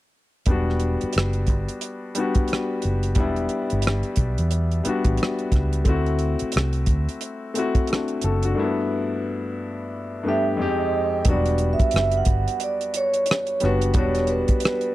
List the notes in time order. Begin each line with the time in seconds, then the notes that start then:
0.46 E1 G3 B3 D4, kick, closed hi-hat
0.51 F#4
0.70 cross-stick
0.80 closed hi-hat
1.01 muted fingered electric bass stroke, closed hi-hat
1.13 F#1, closed hi-hat
1.18 cross-stick
1.33 closed hi-hat
1.47 G1, kick, closed hi-hat
1.69 closed hi-hat
1.81 closed hi-hat
2.15 G3 B3 D4, closed hi-hat
2.19 F#4
2.35 kick, closed hi-hat
2.48 closed hi-hat
2.53 cross-stick
2.82 F#1, closed hi-hat
3.03 closed hi-hat
3.15 E1 G3 B3 D4, kick, closed hi-hat
3.20 E4
3.36 closed hi-hat
3.49 closed hi-hat
3.70 G1, closed hi-hat
3.82 closed hi-hat
3.87 cross-stick
4.03 closed hi-hat
4.16 B1, kick, closed hi-hat
4.38 E2, closed hi-hat
4.51 closed hi-hat
4.71 closed hi-hat
4.84 G3 B3 D4, muted fingered electric bass stroke, closed hi-hat
4.89 F#4
5.04 A1, kick, closed hi-hat
5.17 closed hi-hat
5.23 cross-stick
5.39 closed hi-hat
5.52 C#2, kick, cross-stick, closed hi-hat
5.73 closed hi-hat
5.84 D2 A3 C4 E4, kick, closed hi-hat
5.89 F#4
6.06 closed hi-hat
6.19 closed hi-hat
6.39 muted fingered electric bass stroke, closed hi-hat
6.52 closed hi-hat
6.56 C2, cross-stick
6.73 closed hi-hat
6.86 D2, kick, closed hi-hat
7.09 closed hi-hat
7.21 closed hi-hat
7.54 A3 C4 E4, closed hi-hat
7.58 F#4
7.75 kick, closed hi-hat
7.87 D4 F#4, closed hi-hat
7.93 cross-stick
8.08 closed hi-hat
8.21 F#1 F#4 A4, closed hi-hat
8.43 D4 F#4, closed hi-hat
8.55 G2 A3 A#3 D4
8.59 E4
8.64 B3
10.23 G2 A3 B3 D4
10.28 G4 E5
10.57 F2 G#3 C4 D#4
10.62 G4 D#5
11.25 E1 F#3 B3 D4, kick, closed hi-hat
11.29 G3 F#4 D5
11.46 closed hi-hat
11.58 closed hi-hat
11.73 E5
11.79 muted fingered electric bass stroke, kick, closed hi-hat
11.91 F#1, closed hi-hat
11.96 cross-stick
12.12 closed hi-hat
12.17 F#5
12.25 G1, kick, closed hi-hat
12.48 closed hi-hat
12.60 D5, closed hi-hat
12.81 closed hi-hat
12.94 C#5, closed hi-hat
13.14 closed hi-hat
13.26 closed hi-hat
13.31 cross-stick
13.47 closed hi-hat
13.60 F#1 G3 B3 D4 B4, cross-stick, closed hi-hat
13.65 F#4
13.81 closed hi-hat
13.94 E1 G3 B3 D4 C#5, kick, closed hi-hat
13.98 F#4
14.15 cross-stick, closed hi-hat
14.27 B4, closed hi-hat
14.48 kick, closed hi-hat
14.60 closed hi-hat
14.65 cross-stick
14.81 closed hi-hat